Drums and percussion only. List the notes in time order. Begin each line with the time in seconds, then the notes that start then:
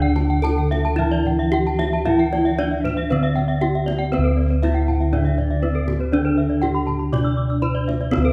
0.02 kendang slap
0.16 kendang high
0.31 kendang slap
0.45 kendang high
0.72 kendang slap, kendang high
0.86 kendang slap
0.99 kendang slap, kendang low
1.13 kendang slap
1.25 kendang slap, kendang low
1.79 kendang slap, kendang high
1.93 kendang slap
2.06 kendang low
2.20 kendang slap
2.33 kendang high
2.46 kendang slap
2.59 kendang slap, kendang high
2.85 kendang slap, kendang high, kendang low
2.98 kendang slap
3.11 kendang slap, kendang low
3.24 kendang slap
3.37 kendang slap, kendang low
3.88 kendang slap, kendang high
4.01 kendang slap
4.14 kendang high
4.26 kendang slap
4.63 kendang high
4.76 kendang slap
4.88 kendang low
5.01 kendang slap
5.14 kendang low
5.26 kendang slap
5.39 kendang low
5.50 kendang slap
5.75 kendang slap
5.88 kendang high, kendang low
6.26 kendang slap
6.63 kendang high, kendang low
6.76 kendang slap
6.88 kendang low
7.01 kendang slap
7.14 kendang high, kendang low
7.26 kendang slap
7.51 kendang slap
7.64 kendang low
7.76 kendang slap
7.89 kendang high
8.13 kendang high
8.25 kendang slap